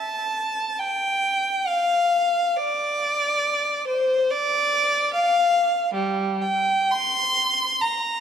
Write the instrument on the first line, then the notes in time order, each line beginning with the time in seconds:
violin
Already playing: A5
0.80 G5
1.67 F5
2.57 D5
3.88 C5
4.31 D5
5.14 F5
5.94 G3
6.42 G5
6.92 C6
7.82 A#5